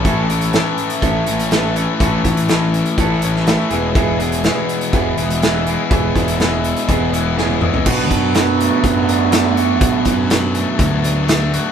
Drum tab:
CC |----------------|----------------|----------------|----------------|
HH |x-xxx-xxx-xxx-x-|x-xxx-xxx-x-x-x-|x-xxx-xxx-xxx-x-|x-xxx-xxx-x-----|
SD |----o-------o---|----o------oo---|----o-------o---|----o-------o---|
T1 |----------------|----------------|----------------|-------------o--|
T2 |----------------|----------------|----------------|--------------o-|
FT |----------------|----------------|----------------|---------------o|
BD |o-------o-------|o-o-----o-------|o-------o-------|o-o-----o-------|

CC |x---------------|----------------|
HH |--x-x-x-x-x-x-x-|x-x-x-x-x-x-x-x-|
SD |----o-------o---|----o-------o---|
T1 |----------------|----------------|
T2 |----------------|----------------|
FT |----------------|----------------|
BD |o-o-----o-------|o-o-----o-------|